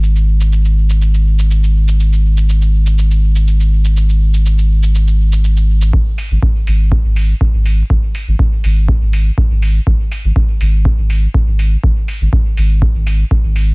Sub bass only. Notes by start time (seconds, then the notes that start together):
Already playing: G#1
5.93 G#1
6.31 G#1
6.67 G#1
7.04 G#1
7.54 G#1
7.90 G#1
8.27 G#1
8.64 G#1
9.01 G#1
9.50 G#1
9.87 G#1
10.24 G#1
10.61 G#1
10.98 G#1
11.47 G#1
11.84 G#1
12.21 G#1
12.57 G#1
12.95 G#1
13.44 G#1